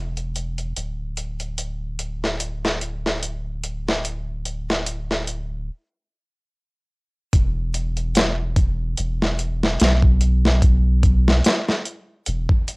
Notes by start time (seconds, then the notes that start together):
Already playing: E1
0.17 closed hi-hat
0.36 closed hi-hat
0.58 closed hi-hat
0.76 D1, closed hi-hat
1.17 closed hi-hat
1.40 closed hi-hat
1.58 closed hi-hat
1.99 closed hi-hat
2.24 snare
2.40 closed hi-hat
2.65 snare
2.81 closed hi-hat
3.06 snare
3.23 closed hi-hat
3.64 closed hi-hat
3.89 snare
4.05 closed hi-hat
4.45 closed hi-hat
4.70 snare
4.86 closed hi-hat
5.11 snare
5.27 closed hi-hat
7.33 E1, kick, closed hi-hat
7.74 closed hi-hat
7.97 closed hi-hat
8.15 snare, closed hi-hat
8.56 kick, closed hi-hat
8.97 E1, closed hi-hat
9.22 snare
9.39 closed hi-hat
9.63 snare
9.80 B1, snare, closed hi-hat
10.02 kick
10.21 closed hi-hat
10.45 snare
10.62 kick, closed hi-hat
11.03 kick, closed hi-hat
11.28 snare
11.44 snare, closed hi-hat
11.69 snare
11.86 closed hi-hat
12.26 E1, closed hi-hat
12.49 kick
12.68 closed hi-hat